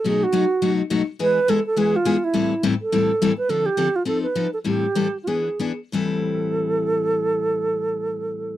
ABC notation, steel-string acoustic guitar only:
X:1
M:4/4
L:1/8
Q:"Swing" 1/4=206
K:Am
V:1 name="Steel-string acoustic guitar"
[B,,^F,A,^D^F] z [B,,F,A,DF] z [B,,F,A,DF] z [B,,F,A,DF] z | [E,^G,B,E^G] z [E,G,B,EG] z [E,G,B,EG] z [E,G,B,EG] z | [A,,E,G,CEA] z [A,,E,G,CEA] z [A,,E,G,CEA] z [A,,E,G,CEA] z | [D,F,CDA] z [D,F,CDA] z [F,C_EA] z [F,CEA] z |
[A,,E,G,CEA] z [A,,E,G,CEA] z [E,B,D^G] z [E,B,DG] z | [A,,E,G,CEA]8- | [A,,E,G,CEA]8 |]